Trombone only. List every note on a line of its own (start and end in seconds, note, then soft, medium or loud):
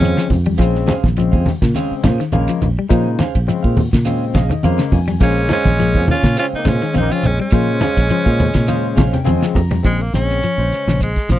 0.00 0.29 G#3 medium
5.23 5.50 G#3 medium
5.52 6.05 G#3 medium
6.11 6.37 C#4 medium
6.40 6.46 C#4 medium
6.57 6.68 A#3 medium
6.67 6.96 G#3 medium
6.99 7.15 A#3 medium
7.14 7.29 C#4 medium
7.28 7.42 G#3 medium
7.43 9.25 G#3 medium